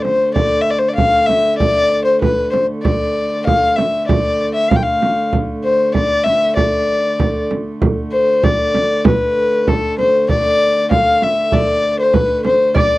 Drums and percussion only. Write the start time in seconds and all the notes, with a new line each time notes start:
0.05 frame drum
0.36 frame drum
0.98 frame drum
1.29 frame drum
1.60 frame drum
2.22 frame drum
2.54 frame drum
2.85 frame drum
3.47 frame drum
3.78 frame drum
4.09 frame drum
4.71 frame drum
5.02 frame drum
5.33 frame drum
5.95 frame drum
6.26 frame drum
6.57 frame drum
6.89 frame drum
7.20 frame drum
7.51 frame drum
7.82 frame drum
8.44 frame drum
8.75 frame drum
9.05 frame drum
9.67 frame drum
9.99 frame drum
10.29 frame drum
10.91 frame drum
11.22 frame drum
11.52 frame drum
12.14 frame drum
12.45 frame drum
12.76 frame drum